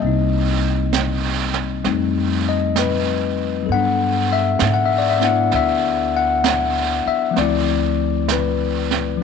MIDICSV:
0, 0, Header, 1, 5, 480
1, 0, Start_track
1, 0, Tempo, 920245
1, 8, Time_signature, 4, 2, 24, 8
1, 4814, End_track
2, 0, Start_track
2, 0, Title_t, "Tine electric piano"
2, 0, Program_c, 0, 4
2, 0, Control_c, 0, 64, 127
2, 0, Note_on_c, 0, 55, 39
2, 0, Note_on_c, 0, 58, 33
2, 0, Note_on_c, 0, 75, 70
2, 14, Control_c, 0, 64, 0
2, 14, Note_on_c, 0, 60, 35
2, 33, Note_on_c, 0, 63, 45
2, 106, Control_c, 0, 64, 127
2, 949, Note_off_c, 0, 55, 0
2, 959, Note_off_c, 0, 58, 0
2, 961, Note_on_c, 0, 55, 42
2, 962, Note_off_c, 0, 60, 0
2, 963, Note_off_c, 0, 63, 0
2, 965, Note_on_c, 0, 57, 34
2, 968, Note_on_c, 0, 60, 35
2, 969, Note_on_c, 0, 63, 39
2, 972, Control_c, 0, 64, 0
2, 1067, Control_c, 0, 64, 127
2, 1261, Note_off_c, 0, 75, 0
2, 1297, Note_on_c, 0, 75, 68
2, 1455, Note_off_c, 0, 75, 0
2, 1455, Note_on_c, 0, 71, 74
2, 1892, Note_on_c, 0, 54, 41
2, 1911, Note_on_c, 0, 69, 37
2, 1919, Note_off_c, 0, 55, 0
2, 1921, Note_off_c, 0, 57, 0
2, 1923, Note_off_c, 0, 60, 0
2, 1924, Note_off_c, 0, 63, 0
2, 1928, Control_c, 0, 64, 0
2, 1932, Note_on_c, 0, 59, 39
2, 1940, Note_on_c, 0, 78, 77
2, 1942, Note_off_c, 0, 71, 0
2, 1952, Note_on_c, 0, 62, 45
2, 2022, Control_c, 0, 64, 127
2, 2256, Note_on_c, 0, 76, 68
2, 2258, Note_off_c, 0, 78, 0
2, 2471, Note_on_c, 0, 78, 63
2, 2484, Note_off_c, 0, 76, 0
2, 2533, Note_off_c, 0, 78, 0
2, 2533, Note_on_c, 0, 76, 62
2, 2595, Note_off_c, 0, 76, 0
2, 2599, Note_on_c, 0, 74, 64
2, 2660, Note_off_c, 0, 74, 0
2, 2660, Note_on_c, 0, 76, 64
2, 2704, Note_off_c, 0, 59, 0
2, 2710, Note_on_c, 0, 59, 36
2, 2716, Note_off_c, 0, 62, 0
2, 2722, Note_off_c, 0, 76, 0
2, 2723, Note_on_c, 0, 62, 34
2, 2725, Note_on_c, 0, 64, 41
2, 2736, Note_on_c, 0, 78, 69
2, 2895, Note_off_c, 0, 78, 0
2, 2899, Note_on_c, 0, 76, 68
2, 3216, Note_on_c, 0, 78, 76
2, 3218, Note_off_c, 0, 76, 0
2, 3691, Note_on_c, 0, 76, 69
2, 3703, Note_off_c, 0, 78, 0
2, 3812, Note_on_c, 0, 53, 44
2, 3827, Note_on_c, 0, 57, 45
2, 3828, Note_off_c, 0, 54, 0
2, 3837, Note_off_c, 0, 59, 0
2, 3837, Note_off_c, 0, 76, 0
2, 3838, Note_off_c, 0, 69, 0
2, 3843, Note_off_c, 0, 62, 0
2, 3845, Note_off_c, 0, 64, 0
2, 3847, Note_on_c, 0, 60, 38
2, 3849, Control_c, 0, 64, 0
2, 3852, Note_on_c, 0, 74, 73
2, 3868, Note_on_c, 0, 64, 49
2, 3952, Control_c, 0, 64, 127
2, 4340, Note_on_c, 0, 71, 64
2, 4342, Note_off_c, 0, 74, 0
2, 4778, Note_off_c, 0, 53, 0
2, 4785, Note_on_c, 0, 53, 45
2, 4799, Note_off_c, 0, 57, 0
2, 4809, Note_off_c, 0, 60, 0
2, 4814, Note_off_c, 0, 53, 0
2, 4814, Note_off_c, 0, 64, 0
2, 4814, Note_off_c, 0, 71, 0
2, 4814, End_track
3, 0, Start_track
3, 0, Title_t, "Upright bass"
3, 0, Program_c, 1, 32
3, 9, Note_on_c, 1, 36, 73
3, 945, Note_off_c, 1, 36, 0
3, 968, Note_on_c, 1, 41, 69
3, 1902, Note_off_c, 1, 41, 0
3, 1924, Note_on_c, 1, 43, 68
3, 2382, Note_off_c, 1, 43, 0
3, 2404, Note_on_c, 1, 44, 64
3, 2863, Note_off_c, 1, 44, 0
3, 2885, Note_on_c, 1, 38, 71
3, 3662, Note_off_c, 1, 38, 0
3, 3844, Note_on_c, 1, 38, 64
3, 4786, Note_off_c, 1, 38, 0
3, 4814, End_track
4, 0, Start_track
4, 0, Title_t, "Muted upright bass strokes"
4, 3684, Note_on_c, 9, 29, 31
4, 3736, Note_off_c, 9, 29, 0
4, 4814, End_track
5, 0, Start_track
5, 0, Title_t, "Drums"
5, 2, Note_on_c, 9, 25, 33
5, 484, Note_off_c, 9, 25, 0
5, 484, Note_on_c, 9, 25, 37
5, 484, Note_on_c, 9, 38, 37
5, 484, Note_on_c, 9, 44, 41
5, 536, Note_off_c, 9, 38, 0
5, 536, Note_off_c, 9, 44, 0
5, 801, Note_on_c, 9, 38, 24
5, 854, Note_off_c, 9, 38, 0
5, 962, Note_off_c, 9, 25, 0
5, 962, Note_on_c, 9, 25, 28
5, 962, Note_on_c, 9, 38, 23
5, 1014, Note_off_c, 9, 38, 0
5, 1438, Note_off_c, 9, 25, 0
5, 1438, Note_on_c, 9, 25, 32
5, 1438, Note_on_c, 9, 38, 36
5, 1438, Note_on_c, 9, 44, 42
5, 1490, Note_off_c, 9, 38, 0
5, 1490, Note_off_c, 9, 44, 0
5, 1917, Note_off_c, 9, 25, 0
5, 1917, Note_on_c, 9, 25, 32
5, 2396, Note_off_c, 9, 25, 0
5, 2396, Note_on_c, 9, 25, 28
5, 2396, Note_on_c, 9, 38, 39
5, 2396, Note_on_c, 9, 44, 46
5, 2448, Note_off_c, 9, 38, 0
5, 2448, Note_off_c, 9, 44, 0
5, 2717, Note_on_c, 9, 38, 21
5, 2769, Note_off_c, 9, 38, 0
5, 2876, Note_off_c, 9, 25, 0
5, 2876, Note_on_c, 9, 25, 32
5, 2876, Note_on_c, 9, 38, 23
5, 2928, Note_off_c, 9, 38, 0
5, 3359, Note_off_c, 9, 25, 0
5, 3359, Note_on_c, 9, 25, 34
5, 3359, Note_on_c, 9, 38, 39
5, 3359, Note_on_c, 9, 44, 46
5, 3411, Note_off_c, 9, 38, 0
5, 3411, Note_off_c, 9, 44, 0
5, 3841, Note_off_c, 9, 25, 0
5, 3841, Note_on_c, 9, 25, 26
5, 3841, Note_on_c, 9, 38, 22
5, 3893, Note_off_c, 9, 38, 0
5, 4321, Note_off_c, 9, 25, 0
5, 4321, Note_on_c, 9, 25, 26
5, 4321, Note_on_c, 9, 38, 36
5, 4321, Note_on_c, 9, 44, 45
5, 4373, Note_off_c, 9, 38, 0
5, 4373, Note_off_c, 9, 44, 0
5, 4646, Note_on_c, 9, 38, 24
5, 4698, Note_off_c, 9, 38, 0
5, 4814, Note_off_c, 9, 25, 0
5, 4814, End_track
0, 0, End_of_file